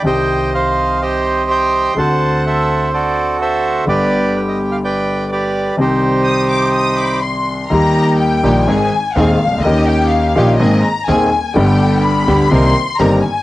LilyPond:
<<
  \new Staff \with { instrumentName = "Violin section" } { \time 4/4 \key c \minor \tempo 4 = 125 r1 | r1 | r1 | r4 ees'''8 d'''8 ees'''8 <b'' d'''>8 c'''4 |
\key ees \major bes''4 g''4 aes''4 f''4 | ees''8 g''8 f''4 ees''8 bes''8 aes''4 | g''4 b''4 c'''4 bes''8 aes''8 | }
  \new Staff \with { instrumentName = "Bandoneon" } { \time 4/4 \key c \minor << { g''4 f''4 ees''4 c'''4 | a''4 e''4 d''4 e''4 | d''4 b'16 ees''8 f''16 g''4 d''4 | c''2. r4 |
\key ees \major r1 | r1 | r1 | } \\ { <c'' ees''>4 c''4 <g' c''>4 <ees'' g''>4 | <c'' fis''>4 <a' c''>4 <fis' a'>4 <a' c''>4 | <g' b'>2 <b' d''>4 <g' b'>4 | <ees' g'>2. r4 |
r1 | r1 | r1 | } >> }
  \new Staff \with { instrumentName = "String section" } { \time 4/4 \key c \minor r1 | r1 | r1 | r1 |
\key ees \major <bes ees' g'>4. <bes ees' g'>8 <c' ees' aes'>8 r8 <c' ees' aes'>8 r8 | <des' ees' g'>4. <des' ees' g'>8 <bes c' aes'>8 r8 <bes c' aes'>8 r8 | <b d' g'>4. <b d' g'>8 <c' ees' bes'>8 r8 <c' ees' bes'>8 r8 | }
  \new Staff \with { instrumentName = "Grand piano" } { \clef bass \time 4/4 \key c \minor <c, c ees g c' g'>1 | <d, d a c' fis'>1 | <g,, g, d g b g'>1 | <c, c ees c' g' d''>1 |
\key ees \major <ees, ees g bes g'>4. <bes,, bes, ees g bes g'>8 <aes,, aes, ees aes c' aes'>8 r8 <ees,, ees, ees aes c' aes'>8 r32 c,32 des,32 d,32 | <ees, ees bes des' g'>4. <bes,, bes, ees bes des' g'>8 <aes,, aes, ees bes c' aes'>8 r8 <ees,, ees, ees bes c' aes'>8 r8 | <g,, g, d g b g'>4. <d, d g b g'>8 <c, c ees bes c' g'>8 r8 <g,, g, ees bes c' g'>8 r8 | }
  \new Staff \with { instrumentName = "Upright bass" } { \clef bass \time 4/4 \key c \minor c,2.~ c,8. r16 | d,2.~ d,8. r16 | g,,2.~ g,,8. r16 | r1 |
\key ees \major ees,4~ ees,16. r32 bes,,16. r32 aes,,16. r8 r32 ees,16. r16 c,32 des,32 d,32 | ees,4~ ees,16. r32 bes,,16. r32 aes,,16. r8 r32 ees,16. r8 r32 | g,,4~ g,,16. r32 d,16. r32 c,16. r8 r32 g,,16. r8 r32 | }
>>